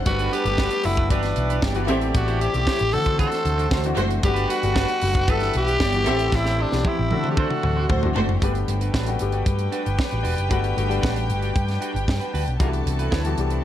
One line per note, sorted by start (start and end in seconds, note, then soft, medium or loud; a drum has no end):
0.00 1.09 A4 medium
0.06 0.27 G1 loud
0.06 0.39 G3 medium
0.06 1.09 G3 medium
0.06 0.39 A3 medium
0.06 0.83 B3 medium
0.06 0.40 B3 medium
0.06 1.87 D4 medium
0.06 0.40 D4 medium
0.06 0.35 F#4 loud
0.06 0.40 F#4 medium
0.06 0.83 G4 medium
0.06 0.83 B4 medium
0.06 1.10 B4 medium
0.06 muted clean electric guitar stroke soft
0.06 kick loud
0.06 closed hi-hat medium
0.19 0.31 D4 medium
0.19 0.32 F#4 medium
0.19 0.32 B4 medium
0.19 closed hi-hat soft
0.32 0.44 D4 medium
0.32 0.45 F#4 medium
0.32 0.87 G4 loud
0.32 0.44 B4 medium
0.32 closed hi-hat medium
0.44 0.66 G1 loud
0.44 0.78 G3 medium
0.44 0.78 A3 medium
0.44 0.78 B3 medium
0.44 0.79 D4 medium
0.44 0.79 G4 medium
0.44 closed hi-hat medium
0.58 0.74 D4 medium
0.58 0.72 F#4 medium
0.58 0.70 B4 loud
0.58 kick loud
0.58 snare loud
0.71 muted clean electric guitar stroke soft
0.71 closed hi-hat medium
0.83 1.11 F#1 medium
0.83 1.08 G3 medium
0.83 1.10 A3 medium
0.83 1.08 B3 medium
0.83 1.08 D4 medium
0.83 1.11 E4 loud
0.83 1.09 F#4 medium
0.83 open hi-hat medium
0.96 1.09 D4 medium
0.96 1.10 F#4 medium
0.96 1.10 B4 medium
0.96 kick loud
0.96 closed hi-hat soft
1.09 1.32 G1 loud
1.09 1.65 E3 medium
1.09 1.65 G3 medium
1.09 1.88 G3 medium
1.09 1.65 B3 medium
1.09 1.65 D4 medium
1.09 1.26 D4 loud
1.09 1.85 D4 medium
1.09 1.61 E4 medium
1.09 1.88 E4 medium
1.09 1.66 F#4 medium
1.09 1.61 G4 medium
1.09 1.23 G4 loud
1.09 1.62 B4 medium
1.09 1.22 B4 loud
1.09 kick loud
1.09 closed hi-hat medium
1.23 muted clean electric guitar stroke soft
1.23 snare soft
1.23 closed hi-hat soft
1.36 1.58 B1 medium
1.36 muted clean electric guitar stroke soft
1.36 closed hi-hat medium
1.50 1.61 D4 medium
1.50 1.62 G4 medium
1.50 1.62 B4 medium
1.50 closed hi-hat medium
1.62 1.89 G1 loud
1.62 1.74 B3 medium
1.62 1.74 G4 medium
1.62 1.74 D5 medium
1.62 kick loud
1.62 snare loud
1.74 1.86 E3 medium
1.74 1.88 G3 medium
1.74 1.87 B3 medium
1.74 1.89 D4 medium
1.74 1.89 D4 soft
1.74 1.89 F#4 loud
1.74 1.89 G4 medium
1.74 1.88 B4 medium
1.74 closed hi-hat medium
1.87 2.10 A1 loud
1.87 4.21 C3 medium
1.87 2.43 E3 loud
1.87 2.44 A3 loud
1.87 4.21 A3 medium
1.87 2.44 B3 medium
1.87 2.11 C4 loud
1.87 2.44 C4 medium
1.87 2.05 E4 medium
1.87 2.92 G4 medium
1.87 2.44 G4 loud
1.87 2.66 G4 medium
1.87 2.02 G4 medium
1.87 2.11 A4 medium
1.87 2.66 A4 medium
1.87 2.01 C5 loud
1.87 2.65 D5 medium
1.87 2.11 E5 loud
1.87 closed hi-hat medium
2.01 muted clean electric guitar stroke medium
2.01 closed hi-hat soft
2.14 2.47 A1 loud
2.14 2.43 F#4 medium
2.14 muted clean electric guitar stroke soft
2.14 kick loud
2.14 closed hi-hat medium
2.27 2.39 E4 medium
2.27 2.40 G4 medium
2.27 2.41 C5 loud
2.27 closed hi-hat soft
2.40 2.53 E4 medium
2.40 2.95 G4 loud
2.40 2.54 G4 medium
2.40 2.53 C5 medium
2.40 closed hi-hat medium
2.53 2.65 B1 medium
2.53 2.87 E3 medium
2.53 2.87 A3 medium
2.53 2.87 B3 medium
2.53 2.87 C4 medium
2.53 2.87 G4 medium
2.53 muted clean electric guitar stroke soft
2.53 closed hi-hat medium
2.66 2.82 E4 medium
2.66 2.80 G4 loud
2.66 2.79 C5 loud
2.66 kick loud
2.66 snare loud
2.79 2.95 A1 loud
2.79 muted clean electric guitar stroke soft
2.79 closed hi-hat medium
2.92 3.25 D3 medium
2.92 4.23 D3 medium
2.92 3.70 E3 medium
2.92 3.70 A3 medium
2.92 3.71 C4 medium
2.92 3.71 D4 medium
2.92 3.95 F#4 medium
2.92 3.71 F#4 medium
2.92 5.26 F#4 medium
2.92 3.95 A4 medium
2.92 3.19 A4 loud
2.92 3.95 C5 medium
2.92 open hi-hat medium
3.05 3.17 D4 medium
3.05 3.18 F#4 medium
3.05 3.18 C5 medium
3.05 kick loud
3.05 closed hi-hat soft
3.18 3.39 D4 medium
3.18 3.31 F#4 loud
3.18 3.94 A4 loud
3.18 3.30 C5 loud
3.18 kick loud
3.18 closed hi-hat medium
3.31 muted clean electric guitar stroke soft
3.31 snare soft
3.31 closed hi-hat soft
3.44 3.66 D2 loud
3.44 muted clean electric guitar stroke soft
3.44 closed hi-hat medium
3.56 3.69 D4 medium
3.56 3.69 F#4 medium
3.56 3.70 C5 medium
3.56 closed hi-hat soft
3.70 3.92 D2 loud
3.70 3.82 A3 medium
3.70 3.82 F#4 medium
3.70 3.82 C5 medium
3.70 muted clean electric guitar stroke soft
3.70 kick loud
3.70 snare loud
3.83 4.18 E3 medium
3.83 4.18 A3 medium
3.83 4.18 C4 medium
3.83 4.18 D4 medium
3.83 4.18 F#4 loud
3.83 muted clean electric guitar stroke soft
3.83 closed hi-hat medium
3.96 4.18 F#1 medium
3.96 4.19 A3 loud
3.96 4.12 D4 medium
3.96 4.19 F#4 loud
3.96 4.09 F#4 medium
3.96 4.19 C5 loud
3.96 4.07 C5 medium
3.96 closed hi-hat medium
4.09 muted clean electric guitar stroke medium
4.09 closed hi-hat medium
4.21 4.45 G1 loud
4.21 6.04 G3 medium
4.21 5.00 G3 medium
4.21 4.57 G3 medium
4.21 4.57 A3 medium
4.21 5.00 B3 medium
4.21 4.57 B3 medium
4.21 6.04 D4 medium
4.21 4.57 D4 medium
4.21 4.52 G4 loud
4.21 5.27 B4 medium
4.21 5.00 B4 medium
4.21 muted clean electric guitar stroke soft
4.21 kick loud
4.21 closed hi-hat medium
4.25 4.58 F#4 loud
4.34 4.45 D4 medium
4.34 4.47 F#4 medium
4.34 4.48 B4 medium
4.34 closed hi-hat soft
4.46 4.60 D4 medium
4.46 4.60 F#4 medium
4.46 4.59 B4 medium
4.46 closed hi-hat medium
4.51 5.32 F#4 loud
4.60 4.84 G1 medium
4.60 4.96 G3 medium
4.60 4.96 A3 medium
4.60 4.96 B3 medium
4.60 4.97 D4 medium
4.60 4.97 F#4 medium
4.60 muted clean electric guitar stroke soft
4.60 closed hi-hat medium
4.73 4.90 D4 medium
4.73 4.88 F#4 loud
4.73 4.87 B4 loud
4.73 kick loud
4.73 snare loud
4.88 muted clean electric guitar stroke soft
4.88 closed hi-hat medium
5.01 5.28 F#1 medium
5.01 5.28 G3 medium
5.01 5.28 A3 medium
5.01 5.27 B3 medium
5.01 5.28 D4 medium
5.01 5.28 F#4 medium
5.01 muted clean electric guitar stroke soft
5.01 open hi-hat medium
5.14 5.26 D4 medium
5.14 5.27 F#4 medium
5.14 5.27 B4 medium
5.14 kick medium
5.14 closed hi-hat soft
5.28 5.49 G1 loud
5.28 5.83 E3 medium
5.28 5.35 F#3 medium
5.28 5.84 B3 medium
5.28 5.44 D4 loud
5.28 5.84 D4 medium
5.28 5.79 E4 medium
5.28 6.06 E4 medium
5.28 5.84 F#4 medium
5.28 5.41 G4 medium
5.28 5.79 G4 medium
5.28 5.55 A4 loud
5.28 5.79 B4 loud
5.28 5.41 B4 loud
5.28 kick loud
5.28 closed hi-hat medium
5.35 5.87 G3 medium
5.40 muted clean electric guitar stroke soft
5.40 snare soft
5.40 closed hi-hat soft
5.54 5.76 B1 medium
5.54 6.37 G4 loud
5.54 muted clean electric guitar stroke soft
5.54 closed hi-hat medium
5.67 5.79 D4 medium
5.67 5.80 G4 medium
5.67 5.80 B4 medium
5.67 closed hi-hat medium
5.80 6.07 G1 medium
5.80 5.91 B3 medium
5.80 5.91 G4 medium
5.80 5.91 D5 medium
5.80 muted clean electric guitar stroke soft
5.80 kick loud
5.80 snare loud
5.93 6.04 E3 medium
5.93 6.06 G3 medium
5.93 6.05 B3 medium
5.93 6.07 D4 medium
5.93 6.07 F#4 medium
5.93 muted clean electric guitar stroke soft
5.93 closed hi-hat medium
6.05 6.28 A1 loud
6.05 8.25 C3 medium
6.05 6.61 E3 medium
6.05 8.25 A3 medium
6.05 6.62 A3 medium
6.05 6.62 B3 medium
6.05 6.28 C4 loud
6.05 6.62 C4 medium
6.05 6.84 C4 medium
6.05 6.22 E4 medium
6.05 6.84 E4 medium
6.05 7.09 G4 medium
6.05 6.18 G4 medium
6.05 6.62 G4 loud
6.05 6.28 A4 loud
6.05 6.84 A4 medium
6.05 6.17 C5 loud
6.05 6.28 E5 loud
6.05 closed hi-hat medium
6.18 muted clean electric guitar stroke soft
6.18 closed hi-hat medium
6.32 6.64 A1 loud
6.32 6.63 E4 loud
6.32 muted clean electric guitar stroke soft
6.32 kick loud
6.32 snare medium
6.44 6.57 E4 medium
6.44 6.58 G4 medium
6.44 6.59 C5 medium
6.44 snare medium
6.58 6.90 D4 medium
6.58 6.71 E4 medium
6.58 6.71 G4 medium
6.58 6.71 C5 medium
6.72 6.83 B1 medium
6.72 7.05 E3 medium
6.72 7.05 A3 medium
6.72 7.05 B3 medium
6.72 7.05 C4 medium
6.72 7.06 G4 medium
6.72 muted clean electric guitar stroke soft
6.72 snare medium
6.85 7.00 E4 medium
6.85 7.30 E4 loud
6.85 6.99 G4 medium
6.85 6.98 C5 loud
6.85 kick loud
6.85 high tom medium
6.99 7.13 A1 medium
6.99 muted clean electric guitar stroke soft
7.11 8.25 D3 medium
7.11 7.43 D3 medium
7.11 7.89 E3 medium
7.11 7.89 A3 medium
7.11 7.89 C4 medium
7.11 8.14 D4 medium
7.11 7.89 D4 medium
7.11 8.13 F#4 medium
7.11 8.25 F#4 medium
7.11 7.89 F#4 medium
7.11 8.13 A4 medium
7.11 muted clean electric guitar stroke soft
7.11 high tom medium
7.24 7.36 D4 soft
7.24 7.37 F#4 medium
7.24 7.37 C5 medium
7.24 mid tom medium
7.31 7.41 G4 medium
7.37 7.53 D4 medium
7.37 7.51 F#4 loud
7.37 7.90 F#4 medium
7.37 7.50 C5 loud
7.37 kick loud
7.50 muted clean electric guitar stroke soft
7.50 mid tom medium
7.63 7.85 D2 loud
7.63 muted clean electric guitar stroke soft
7.63 mid tom medium
7.76 7.88 D4 medium
7.76 7.88 F#4 medium
7.76 7.89 C5 medium
7.89 8.10 D2 loud
7.89 8.00 A3 medium
7.89 8.00 F#4 medium
7.89 8.00 C5 loud
7.89 muted clean electric guitar stroke soft
7.89 kick loud
7.89 mid tom loud
8.02 8.36 E3 medium
8.02 8.36 A3 medium
8.02 8.36 C4 medium
8.02 8.36 D4 medium
8.02 8.37 F#4 loud
8.02 muted clean electric guitar stroke soft
8.02 floor tom loud
8.15 8.37 F#1 medium
8.15 8.37 A3 loud
8.15 8.31 D4 medium
8.15 8.37 F#4 loud
8.15 8.28 F#4 medium
8.15 8.37 C5 loud
8.15 8.27 C5 medium
8.15 floor tom loud
8.28 muted clean electric guitar stroke medium
8.28 floor tom loud
8.41 8.63 G1 loud
8.41 12.56 G3 medium
8.41 8.97 G3 medium
8.41 8.98 A3 medium
8.41 8.98 B3 medium
8.41 12.56 D4 medium
8.41 8.57 D4 medium
8.41 8.98 D4 medium
8.41 8.55 F#4 medium
8.41 12.56 G4 medium
8.41 8.98 G4 loud
8.41 12.56 B4 medium
8.41 8.54 B4 medium
8.41 12.56 G5 medium
8.41 kick loud
8.41 closed hi-hat medium
8.55 muted clean electric guitar stroke medium
8.55 closed hi-hat soft
8.68 8.89 G1 loud
8.68 muted clean electric guitar stroke soft
8.68 closed hi-hat medium
8.81 8.92 D4 soft
8.81 8.93 F#4 medium
8.81 8.93 B4 medium
8.81 closed hi-hat medium
8.94 9.15 A1 medium
8.94 9.09 D4 medium
8.94 9.07 F#4 medium
8.94 9.06 B4 medium
8.94 kick loud
8.94 snare loud
9.06 9.18 G3 medium
9.06 9.18 A3 medium
9.06 9.18 B3 medium
9.06 9.18 D4 medium
9.06 9.19 F#4 medium
9.06 muted clean electric guitar stroke soft
9.06 closed hi-hat medium
9.19 9.42 G1 medium
9.19 10.09 G3 medium
9.19 10.09 A3 medium
9.19 10.09 B3 medium
9.19 10.09 D4 medium
9.19 10.10 G4 loud
9.19 muted clean electric guitar stroke soft
9.19 closed hi-hat medium
9.32 9.46 D4 soft
9.32 9.46 F#4 medium
9.32 9.45 D5 medium
9.32 closed hi-hat soft
9.46 9.67 G2 loud
9.46 muted clean electric guitar stroke soft
9.46 kick loud
9.46 closed hi-hat medium
9.59 muted clean electric guitar stroke soft
9.59 closed hi-hat soft
9.72 9.88 D4 medium
9.72 9.84 F#4 medium
9.72 9.83 B4 medium
9.72 closed hi-hat medium
9.85 9.97 G1 medium
9.85 muted clean electric guitar stroke soft
9.85 closed hi-hat medium
9.97 muted clean electric guitar stroke soft
9.97 kick loud
9.97 snare loud
10.11 10.23 A1 medium
10.11 10.22 D4 soft
10.11 10.22 F#4 soft
10.11 10.23 B4 medium
10.11 closed hi-hat soft
10.23 10.35 E1 medium
10.23 10.40 D4 medium
10.23 10.36 F#4 medium
10.23 10.36 B4 medium
10.23 open hi-hat medium
10.37 10.48 F#1 medium
10.37 muted clean electric guitar stroke medium
10.37 closed hi-hat soft
10.49 10.72 G1 loud
10.49 10.73 G3 medium
10.49 10.73 A3 medium
10.49 10.73 B3 medium
10.49 10.66 D4 medium
10.49 10.74 D4 medium
10.49 10.62 F#4 medium
10.49 10.74 F#4 loud
10.49 10.61 B4 medium
10.49 kick loud
10.49 closed hi-hat medium
10.62 muted clean electric guitar stroke soft
10.62 closed hi-hat soft
10.75 10.98 G1 loud
10.75 10.87 G3 medium
10.75 10.88 A3 medium
10.75 10.88 B3 medium
10.75 10.88 D4 medium
10.75 10.89 F#4 medium
10.75 muted clean electric guitar stroke soft
10.75 closed hi-hat medium
10.89 11.78 G3 medium
10.89 11.78 A3 medium
10.89 11.78 B3 medium
10.89 11.79 D4 medium
10.89 11.00 D4 medium
10.89 11.01 F#4 medium
10.89 11.79 G4 medium
10.89 11.01 B4 medium
10.89 closed hi-hat soft
11.01 11.31 A1 medium
11.01 11.18 D4 medium
11.01 11.15 F#4 loud
11.01 11.14 B4 medium
11.01 kick loud
11.01 snare loud
11.15 muted clean electric guitar stroke soft
11.15 closed hi-hat medium
11.28 11.50 G1 medium
11.28 muted clean electric guitar stroke soft
11.28 closed hi-hat medium
11.42 11.54 D4 soft
11.42 11.54 F#4 medium
11.42 11.54 D5 medium
11.42 closed hi-hat soft
11.55 11.77 G2 loud
11.55 muted clean electric guitar stroke soft
11.55 kick loud
11.55 closed hi-hat medium
11.67 muted clean electric guitar stroke soft
11.67 snare soft
11.67 closed hi-hat soft
11.80 11.97 D4 medium
11.80 11.94 F#4 medium
11.80 11.93 B4 medium
11.80 closed hi-hat medium
11.94 12.05 G1 loud
11.94 muted clean electric guitar stroke medium
11.94 closed hi-hat soft
12.07 12.18 G2 loud
12.07 muted clean electric guitar stroke soft
12.07 kick loud
12.07 snare loud
12.20 12.32 D4 soft
12.20 12.33 F#4 medium
12.20 12.33 B4 medium
12.20 closed hi-hat soft
12.33 12.45 D2 medium
12.33 12.49 D4 medium
12.33 12.46 F#4 medium
12.33 12.45 B4 loud
12.33 open hi-hat medium
12.46 12.58 B1 medium
12.46 muted clean electric guitar stroke medium
12.46 closed hi-hat medium
12.59 12.81 C2 loud
12.59 13.64 C3 medium
12.59 13.15 E3 medium
12.59 13.15 G3 medium
12.59 13.15 B3 medium
12.59 13.64 B3 medium
12.59 13.64 D4 medium
12.59 13.16 D4 medium
12.59 12.80 E4 medium
12.59 13.64 E4 medium
12.59 12.73 F#4 medium
12.59 13.16 F#4 loud
12.59 13.62 A4 medium
12.59 12.73 B4 medium
12.59 13.62 A5 medium
12.59 kick loud
12.59 closed hi-hat medium
12.73 muted clean electric guitar stroke soft
12.73 closed hi-hat soft
12.86 13.07 C2 loud
12.86 muted clean electric guitar stroke soft
12.86 closed hi-hat medium
12.99 13.10 E4 soft
12.99 13.10 F#4 medium
12.99 13.11 B4 medium
12.99 closed hi-hat soft
13.11 13.33 D2 loud
13.11 13.27 E4 medium
13.11 13.24 F#4 medium
13.11 13.23 B4 medium
13.11 kick loud
13.11 snare loud
13.25 13.36 E3 medium
13.25 13.37 G3 medium
13.25 13.37 B3 medium
13.25 13.37 D4 medium
13.25 13.37 F#4 medium
13.25 muted clean electric guitar stroke medium
13.25 closed hi-hat medium
13.37 13.59 C2 medium
13.37 13.64 E3 medium
13.37 13.64 G3 medium
13.37 13.64 B3 medium
13.37 13.64 D4 medium
13.37 13.64 G4 medium
13.37 muted clean electric guitar stroke soft
13.37 closed hi-hat medium
13.50 13.63 E4 soft
13.50 13.63 F#4 medium
13.50 13.63 C5 medium
13.50 closed hi-hat soft